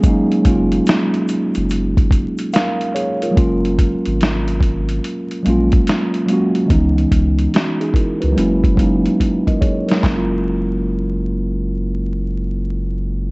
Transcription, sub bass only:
X:1
M:4/4
L:1/16
Q:"Swing 16ths" 1/4=72
K:F#
V:1 name="Sub bass" clef=bass
z2 F,,,2 z3 F,,,4 z4 z | F,,,3 G,,,4- G,,, z2 A,,,2 z4 | C,,2 C,,2 z3 C,, F,,,4 z4 | F,,,16 |]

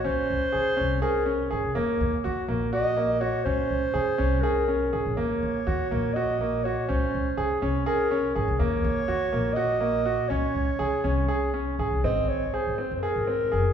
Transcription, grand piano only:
X:1
M:7/8
L:1/8
Q:1/4=123
K:Db
V:1 name="Grand piano"
D2 A D A D A | B,2 G B, G B, G | D2 A D A D A | B,2 G B, G B, G |
D2 A D A D A | B,2 G B, G B, G | D2 A D A D A | C2 A C A C A |]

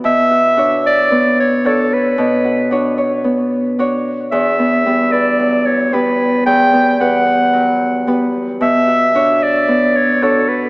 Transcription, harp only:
X:1
M:4/4
L:1/8
Q:1/4=112
K:Bm
V:1 name="Harp"
B,, F [DFc]2 B,2 [DFc]2 | B,, F [DFc] c B,2 [DFc]2 | E,, B, [G,B,B] B F,2 [G,B,B]2 | E,, B, [G,B,B] B F,2 [G,B,B]2 |
B,, F [DFc]2 B,2 [DFc]2 |]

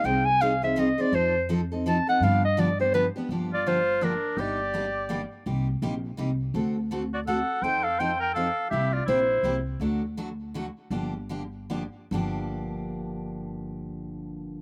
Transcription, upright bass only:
X:1
M:3/4
L:1/8
Q:"Swing" 1/4=166
K:Gphr
V:1 name="Upright bass" clef=bass
C,,6 | F,,6 | G,,6 | [K:Gm] G,,,6 |
G,,,6 | C,,2 B,,,2 C,,2 | D,,6 | F,,6 |
C,,2 B,,,2 C,,2 | D,,6 | G,,,6 | G,,,6- |
G,,,6 |]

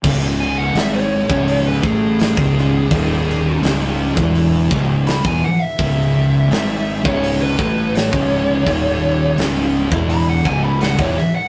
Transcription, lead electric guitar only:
X:1
M:4/4
L:1/16
Q:1/4=84
K:C#m
V:1 name="Lead electric guitar"
z2 g f e c4 B G2 G4- | G4 z8 b g f e- | e6- e c2 B3 c4- | c4 z4 b f g b f c e f |]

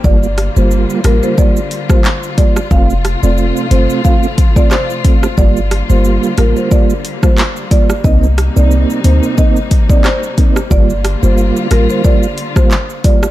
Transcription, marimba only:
X:1
M:4/4
L:1/16
Q:"Swing 16ths" 1/4=90
K:Gm
V:1 name="Marimba"
d z2 c z2 B c d z2 c z2 d z | f z2 d z2 c z f z2 d c3 z | d z2 c z2 B c d z2 c z2 d z | e z2 d z2 c z e z2 d c3 z |
d z2 c z2 B c d z2 c z2 d z |]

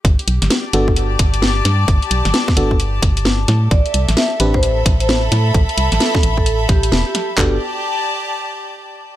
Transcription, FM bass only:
X:1
M:4/4
L:1/16
Q:"Swing 16ths" 1/4=131
K:G
V:1 name="FM bass" clef=bass
G,,, z B,,, G,,, z2 G,,,4 G,,,4 G,,2 | G,,, z B,,, G,,, z2 G,,,4 G,,,4 A,,2 | A,,, z C,, A,,, z2 A,,,4 A,,,4 A,,2 | A,,, z C,, A,,, z2 A,,,4 A,,,2 E,,, z3 |
G,,,2 z12 z2 |]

